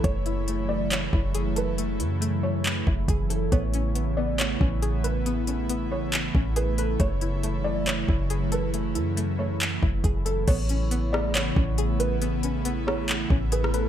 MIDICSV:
0, 0, Header, 1, 6, 480
1, 0, Start_track
1, 0, Tempo, 434783
1, 46, Time_signature, 4, 2, 24, 8
1, 15332, End_track
2, 0, Start_track
2, 0, Title_t, "Felt piano"
2, 0, Program_c, 0, 0
2, 44, Note_on_c, 0, 73, 101
2, 722, Note_off_c, 0, 73, 0
2, 759, Note_on_c, 0, 74, 88
2, 990, Note_off_c, 0, 74, 0
2, 1007, Note_on_c, 0, 73, 76
2, 1684, Note_off_c, 0, 73, 0
2, 1741, Note_on_c, 0, 71, 82
2, 1962, Note_off_c, 0, 71, 0
2, 2685, Note_on_c, 0, 73, 79
2, 2914, Note_off_c, 0, 73, 0
2, 3648, Note_on_c, 0, 69, 73
2, 3875, Note_off_c, 0, 69, 0
2, 3885, Note_on_c, 0, 73, 88
2, 4562, Note_off_c, 0, 73, 0
2, 4602, Note_on_c, 0, 74, 77
2, 4832, Note_off_c, 0, 74, 0
2, 4843, Note_on_c, 0, 73, 84
2, 5522, Note_off_c, 0, 73, 0
2, 5567, Note_on_c, 0, 71, 83
2, 5794, Note_off_c, 0, 71, 0
2, 6531, Note_on_c, 0, 73, 79
2, 6756, Note_off_c, 0, 73, 0
2, 7250, Note_on_c, 0, 71, 89
2, 7476, Note_off_c, 0, 71, 0
2, 7493, Note_on_c, 0, 69, 76
2, 7718, Note_off_c, 0, 69, 0
2, 7730, Note_on_c, 0, 73, 101
2, 8405, Note_off_c, 0, 73, 0
2, 8439, Note_on_c, 0, 74, 87
2, 8670, Note_off_c, 0, 74, 0
2, 8685, Note_on_c, 0, 73, 79
2, 9362, Note_off_c, 0, 73, 0
2, 9419, Note_on_c, 0, 71, 82
2, 9641, Note_off_c, 0, 71, 0
2, 10365, Note_on_c, 0, 73, 78
2, 10594, Note_off_c, 0, 73, 0
2, 11330, Note_on_c, 0, 69, 76
2, 11556, Note_off_c, 0, 69, 0
2, 11566, Note_on_c, 0, 73, 91
2, 12243, Note_off_c, 0, 73, 0
2, 12285, Note_on_c, 0, 74, 79
2, 12513, Note_off_c, 0, 74, 0
2, 12527, Note_on_c, 0, 73, 85
2, 13203, Note_off_c, 0, 73, 0
2, 13243, Note_on_c, 0, 71, 83
2, 13472, Note_off_c, 0, 71, 0
2, 14210, Note_on_c, 0, 73, 84
2, 14436, Note_off_c, 0, 73, 0
2, 14931, Note_on_c, 0, 71, 91
2, 15157, Note_off_c, 0, 71, 0
2, 15170, Note_on_c, 0, 69, 84
2, 15332, Note_off_c, 0, 69, 0
2, 15332, End_track
3, 0, Start_track
3, 0, Title_t, "Synth pluck"
3, 0, Program_c, 1, 84
3, 50, Note_on_c, 1, 57, 93
3, 287, Note_on_c, 1, 64, 77
3, 516, Note_off_c, 1, 57, 0
3, 529, Note_on_c, 1, 57, 85
3, 758, Note_off_c, 1, 57, 0
3, 771, Note_on_c, 1, 57, 69
3, 1241, Note_off_c, 1, 64, 0
3, 1255, Note_on_c, 1, 64, 78
3, 1486, Note_on_c, 1, 68, 94
3, 1725, Note_on_c, 1, 69, 86
3, 1953, Note_off_c, 1, 57, 0
3, 1966, Note_on_c, 1, 57, 91
3, 2185, Note_off_c, 1, 64, 0
3, 2198, Note_on_c, 1, 64, 75
3, 2428, Note_off_c, 1, 57, 0
3, 2441, Note_on_c, 1, 57, 94
3, 2677, Note_off_c, 1, 57, 0
3, 2690, Note_on_c, 1, 57, 75
3, 2926, Note_off_c, 1, 68, 0
3, 3152, Note_off_c, 1, 64, 0
3, 3165, Note_off_c, 1, 69, 0
3, 3165, Note_on_c, 1, 64, 79
3, 3414, Note_on_c, 1, 68, 88
3, 3639, Note_on_c, 1, 69, 78
3, 3883, Note_off_c, 1, 69, 0
3, 3886, Note_off_c, 1, 64, 0
3, 3888, Note_off_c, 1, 57, 0
3, 3890, Note_off_c, 1, 68, 0
3, 3891, Note_on_c, 1, 59, 95
3, 4136, Note_on_c, 1, 61, 84
3, 4351, Note_off_c, 1, 59, 0
3, 4364, Note_on_c, 1, 59, 88
3, 4595, Note_off_c, 1, 59, 0
3, 4608, Note_on_c, 1, 59, 83
3, 5071, Note_off_c, 1, 61, 0
3, 5084, Note_on_c, 1, 61, 85
3, 5324, Note_on_c, 1, 68, 95
3, 5565, Note_on_c, 1, 71, 88
3, 5793, Note_off_c, 1, 59, 0
3, 5806, Note_on_c, 1, 59, 95
3, 6035, Note_off_c, 1, 61, 0
3, 6048, Note_on_c, 1, 61, 77
3, 6277, Note_off_c, 1, 59, 0
3, 6290, Note_on_c, 1, 59, 89
3, 6509, Note_off_c, 1, 59, 0
3, 6523, Note_on_c, 1, 59, 74
3, 6765, Note_off_c, 1, 68, 0
3, 6992, Note_off_c, 1, 61, 0
3, 7005, Note_on_c, 1, 61, 75
3, 7006, Note_off_c, 1, 71, 0
3, 7242, Note_on_c, 1, 68, 86
3, 7488, Note_on_c, 1, 71, 84
3, 7724, Note_off_c, 1, 59, 0
3, 7724, Note_off_c, 1, 68, 0
3, 7726, Note_off_c, 1, 61, 0
3, 7727, Note_off_c, 1, 71, 0
3, 7727, Note_on_c, 1, 57, 89
3, 7966, Note_on_c, 1, 64, 78
3, 8193, Note_off_c, 1, 57, 0
3, 8207, Note_on_c, 1, 57, 84
3, 8434, Note_off_c, 1, 57, 0
3, 8447, Note_on_c, 1, 57, 71
3, 8919, Note_off_c, 1, 64, 0
3, 8932, Note_on_c, 1, 64, 75
3, 9165, Note_on_c, 1, 68, 92
3, 9403, Note_on_c, 1, 69, 88
3, 9633, Note_off_c, 1, 57, 0
3, 9647, Note_on_c, 1, 57, 89
3, 9866, Note_off_c, 1, 64, 0
3, 9879, Note_on_c, 1, 64, 73
3, 10107, Note_off_c, 1, 57, 0
3, 10120, Note_on_c, 1, 57, 94
3, 10357, Note_off_c, 1, 57, 0
3, 10370, Note_on_c, 1, 57, 80
3, 10606, Note_off_c, 1, 68, 0
3, 10832, Note_off_c, 1, 64, 0
3, 10844, Note_off_c, 1, 69, 0
3, 10845, Note_on_c, 1, 64, 79
3, 11094, Note_on_c, 1, 68, 92
3, 11320, Note_on_c, 1, 69, 81
3, 11563, Note_off_c, 1, 69, 0
3, 11566, Note_off_c, 1, 64, 0
3, 11568, Note_off_c, 1, 57, 0
3, 11570, Note_off_c, 1, 68, 0
3, 11571, Note_on_c, 1, 59, 96
3, 11816, Note_on_c, 1, 61, 83
3, 12032, Note_off_c, 1, 59, 0
3, 12045, Note_on_c, 1, 59, 93
3, 12278, Note_off_c, 1, 59, 0
3, 12291, Note_on_c, 1, 59, 82
3, 12755, Note_off_c, 1, 61, 0
3, 12768, Note_on_c, 1, 61, 81
3, 13006, Note_on_c, 1, 68, 98
3, 13247, Note_on_c, 1, 71, 87
3, 13473, Note_off_c, 1, 59, 0
3, 13486, Note_on_c, 1, 59, 95
3, 13717, Note_off_c, 1, 61, 0
3, 13731, Note_on_c, 1, 61, 80
3, 13955, Note_off_c, 1, 59, 0
3, 13969, Note_on_c, 1, 59, 92
3, 14191, Note_off_c, 1, 59, 0
3, 14204, Note_on_c, 1, 59, 70
3, 14446, Note_off_c, 1, 68, 0
3, 14673, Note_off_c, 1, 61, 0
3, 14686, Note_off_c, 1, 71, 0
3, 14686, Note_on_c, 1, 61, 76
3, 14924, Note_on_c, 1, 68, 90
3, 15168, Note_on_c, 1, 71, 84
3, 15332, Note_off_c, 1, 59, 0
3, 15332, Note_off_c, 1, 61, 0
3, 15332, Note_off_c, 1, 68, 0
3, 15332, Note_off_c, 1, 71, 0
3, 15332, End_track
4, 0, Start_track
4, 0, Title_t, "Analog synth pad"
4, 0, Program_c, 2, 89
4, 0, Note_on_c, 2, 49, 80
4, 0, Note_on_c, 2, 52, 78
4, 0, Note_on_c, 2, 64, 88
4, 44, Note_on_c, 2, 54, 73
4, 44, Note_on_c, 2, 57, 76
4, 3841, Note_off_c, 2, 64, 0
4, 3847, Note_off_c, 2, 54, 0
4, 3847, Note_off_c, 2, 57, 0
4, 3889, Note_on_c, 2, 57, 77
4, 3889, Note_on_c, 2, 59, 75
4, 3889, Note_on_c, 2, 64, 89
4, 7681, Note_off_c, 2, 49, 0
4, 7681, Note_off_c, 2, 52, 0
4, 7689, Note_off_c, 2, 59, 0
4, 7724, Note_on_c, 2, 54, 74
4, 7726, Note_on_c, 2, 49, 83
4, 7727, Note_on_c, 2, 52, 77
4, 11523, Note_off_c, 2, 57, 0
4, 11524, Note_off_c, 2, 64, 0
4, 11527, Note_off_c, 2, 54, 0
4, 11528, Note_off_c, 2, 49, 0
4, 11528, Note_off_c, 2, 52, 0
4, 11565, Note_on_c, 2, 49, 84
4, 11565, Note_on_c, 2, 57, 75
4, 11565, Note_on_c, 2, 64, 95
4, 11566, Note_on_c, 2, 52, 76
4, 11566, Note_on_c, 2, 59, 80
4, 15332, Note_off_c, 2, 49, 0
4, 15332, Note_off_c, 2, 52, 0
4, 15332, Note_off_c, 2, 57, 0
4, 15332, Note_off_c, 2, 59, 0
4, 15332, Note_off_c, 2, 64, 0
4, 15332, End_track
5, 0, Start_track
5, 0, Title_t, "808-style bass"
5, 0, Program_c, 3, 38
5, 46, Note_on_c, 3, 30, 112
5, 1202, Note_off_c, 3, 30, 0
5, 1248, Note_on_c, 3, 30, 103
5, 2206, Note_on_c, 3, 42, 106
5, 2222, Note_off_c, 3, 30, 0
5, 3122, Note_off_c, 3, 42, 0
5, 3169, Note_on_c, 3, 30, 102
5, 3398, Note_off_c, 3, 30, 0
5, 3404, Note_on_c, 3, 30, 105
5, 3866, Note_off_c, 3, 30, 0
5, 3888, Note_on_c, 3, 33, 108
5, 5043, Note_off_c, 3, 33, 0
5, 5087, Note_on_c, 3, 33, 104
5, 6963, Note_off_c, 3, 33, 0
5, 7007, Note_on_c, 3, 33, 108
5, 7698, Note_off_c, 3, 33, 0
5, 7726, Note_on_c, 3, 30, 109
5, 8882, Note_off_c, 3, 30, 0
5, 8927, Note_on_c, 3, 30, 105
5, 9887, Note_on_c, 3, 42, 97
5, 9903, Note_off_c, 3, 30, 0
5, 10802, Note_off_c, 3, 42, 0
5, 10849, Note_on_c, 3, 30, 100
5, 11078, Note_off_c, 3, 30, 0
5, 11084, Note_on_c, 3, 30, 106
5, 11546, Note_off_c, 3, 30, 0
5, 11567, Note_on_c, 3, 33, 113
5, 12722, Note_off_c, 3, 33, 0
5, 12767, Note_on_c, 3, 33, 106
5, 14642, Note_off_c, 3, 33, 0
5, 14687, Note_on_c, 3, 33, 99
5, 15332, Note_off_c, 3, 33, 0
5, 15332, End_track
6, 0, Start_track
6, 0, Title_t, "Drums"
6, 46, Note_on_c, 9, 36, 121
6, 46, Note_on_c, 9, 42, 68
6, 156, Note_off_c, 9, 36, 0
6, 156, Note_off_c, 9, 42, 0
6, 284, Note_on_c, 9, 42, 62
6, 395, Note_off_c, 9, 42, 0
6, 528, Note_on_c, 9, 42, 80
6, 638, Note_off_c, 9, 42, 0
6, 1005, Note_on_c, 9, 42, 73
6, 1014, Note_on_c, 9, 39, 107
6, 1115, Note_off_c, 9, 42, 0
6, 1125, Note_off_c, 9, 39, 0
6, 1248, Note_on_c, 9, 36, 92
6, 1358, Note_off_c, 9, 36, 0
6, 1485, Note_on_c, 9, 42, 80
6, 1595, Note_off_c, 9, 42, 0
6, 1726, Note_on_c, 9, 42, 70
6, 1837, Note_off_c, 9, 42, 0
6, 1968, Note_on_c, 9, 42, 71
6, 2078, Note_off_c, 9, 42, 0
6, 2206, Note_on_c, 9, 42, 63
6, 2317, Note_off_c, 9, 42, 0
6, 2449, Note_on_c, 9, 42, 79
6, 2560, Note_off_c, 9, 42, 0
6, 2924, Note_on_c, 9, 42, 76
6, 2934, Note_on_c, 9, 39, 106
6, 3034, Note_off_c, 9, 42, 0
6, 3044, Note_off_c, 9, 39, 0
6, 3168, Note_on_c, 9, 36, 92
6, 3278, Note_off_c, 9, 36, 0
6, 3404, Note_on_c, 9, 36, 99
6, 3406, Note_on_c, 9, 42, 77
6, 3514, Note_off_c, 9, 36, 0
6, 3516, Note_off_c, 9, 42, 0
6, 3647, Note_on_c, 9, 42, 70
6, 3757, Note_off_c, 9, 42, 0
6, 3887, Note_on_c, 9, 36, 113
6, 3887, Note_on_c, 9, 42, 71
6, 3997, Note_off_c, 9, 36, 0
6, 3997, Note_off_c, 9, 42, 0
6, 4124, Note_on_c, 9, 42, 65
6, 4234, Note_off_c, 9, 42, 0
6, 4366, Note_on_c, 9, 42, 80
6, 4476, Note_off_c, 9, 42, 0
6, 4845, Note_on_c, 9, 42, 72
6, 4855, Note_on_c, 9, 39, 107
6, 4956, Note_off_c, 9, 42, 0
6, 4965, Note_off_c, 9, 39, 0
6, 5088, Note_on_c, 9, 36, 94
6, 5198, Note_off_c, 9, 36, 0
6, 5326, Note_on_c, 9, 42, 73
6, 5437, Note_off_c, 9, 42, 0
6, 5567, Note_on_c, 9, 42, 70
6, 5678, Note_off_c, 9, 42, 0
6, 5808, Note_on_c, 9, 42, 65
6, 5918, Note_off_c, 9, 42, 0
6, 6043, Note_on_c, 9, 42, 63
6, 6153, Note_off_c, 9, 42, 0
6, 6287, Note_on_c, 9, 42, 77
6, 6397, Note_off_c, 9, 42, 0
6, 6764, Note_on_c, 9, 42, 76
6, 6773, Note_on_c, 9, 39, 103
6, 6874, Note_off_c, 9, 42, 0
6, 6884, Note_off_c, 9, 39, 0
6, 7007, Note_on_c, 9, 36, 94
6, 7117, Note_off_c, 9, 36, 0
6, 7244, Note_on_c, 9, 42, 76
6, 7355, Note_off_c, 9, 42, 0
6, 7486, Note_on_c, 9, 42, 69
6, 7597, Note_off_c, 9, 42, 0
6, 7724, Note_on_c, 9, 42, 67
6, 7726, Note_on_c, 9, 36, 113
6, 7835, Note_off_c, 9, 42, 0
6, 7836, Note_off_c, 9, 36, 0
6, 7964, Note_on_c, 9, 42, 62
6, 8074, Note_off_c, 9, 42, 0
6, 8207, Note_on_c, 9, 42, 79
6, 8318, Note_off_c, 9, 42, 0
6, 8684, Note_on_c, 9, 42, 74
6, 8694, Note_on_c, 9, 39, 108
6, 8795, Note_off_c, 9, 42, 0
6, 8804, Note_off_c, 9, 39, 0
6, 8927, Note_on_c, 9, 36, 91
6, 9037, Note_off_c, 9, 36, 0
6, 9164, Note_on_c, 9, 42, 74
6, 9275, Note_off_c, 9, 42, 0
6, 9405, Note_on_c, 9, 42, 71
6, 9515, Note_off_c, 9, 42, 0
6, 9646, Note_on_c, 9, 42, 67
6, 9756, Note_off_c, 9, 42, 0
6, 9884, Note_on_c, 9, 42, 62
6, 9995, Note_off_c, 9, 42, 0
6, 10127, Note_on_c, 9, 42, 79
6, 10237, Note_off_c, 9, 42, 0
6, 10606, Note_on_c, 9, 42, 71
6, 10616, Note_on_c, 9, 39, 102
6, 10717, Note_off_c, 9, 42, 0
6, 10726, Note_off_c, 9, 39, 0
6, 10848, Note_on_c, 9, 36, 92
6, 10958, Note_off_c, 9, 36, 0
6, 11083, Note_on_c, 9, 36, 95
6, 11086, Note_on_c, 9, 42, 75
6, 11194, Note_off_c, 9, 36, 0
6, 11196, Note_off_c, 9, 42, 0
6, 11325, Note_on_c, 9, 42, 71
6, 11436, Note_off_c, 9, 42, 0
6, 11565, Note_on_c, 9, 42, 70
6, 11565, Note_on_c, 9, 49, 102
6, 11566, Note_on_c, 9, 36, 121
6, 11675, Note_off_c, 9, 42, 0
6, 11676, Note_off_c, 9, 49, 0
6, 11677, Note_off_c, 9, 36, 0
6, 11805, Note_on_c, 9, 42, 67
6, 11915, Note_off_c, 9, 42, 0
6, 12048, Note_on_c, 9, 42, 84
6, 12158, Note_off_c, 9, 42, 0
6, 12299, Note_on_c, 9, 37, 109
6, 12410, Note_off_c, 9, 37, 0
6, 12526, Note_on_c, 9, 42, 74
6, 12535, Note_on_c, 9, 39, 110
6, 12636, Note_off_c, 9, 42, 0
6, 12645, Note_off_c, 9, 39, 0
6, 12767, Note_on_c, 9, 36, 97
6, 12877, Note_off_c, 9, 36, 0
6, 13005, Note_on_c, 9, 42, 80
6, 13116, Note_off_c, 9, 42, 0
6, 13247, Note_on_c, 9, 42, 74
6, 13358, Note_off_c, 9, 42, 0
6, 13486, Note_on_c, 9, 42, 68
6, 13597, Note_off_c, 9, 42, 0
6, 13725, Note_on_c, 9, 42, 62
6, 13835, Note_off_c, 9, 42, 0
6, 13967, Note_on_c, 9, 42, 81
6, 14078, Note_off_c, 9, 42, 0
6, 14219, Note_on_c, 9, 37, 105
6, 14329, Note_off_c, 9, 37, 0
6, 14445, Note_on_c, 9, 42, 73
6, 14455, Note_on_c, 9, 39, 108
6, 14556, Note_off_c, 9, 42, 0
6, 14565, Note_off_c, 9, 39, 0
6, 14687, Note_on_c, 9, 36, 94
6, 14797, Note_off_c, 9, 36, 0
6, 14926, Note_on_c, 9, 42, 77
6, 15036, Note_off_c, 9, 42, 0
6, 15060, Note_on_c, 9, 37, 100
6, 15167, Note_on_c, 9, 42, 73
6, 15171, Note_off_c, 9, 37, 0
6, 15277, Note_off_c, 9, 42, 0
6, 15332, End_track
0, 0, End_of_file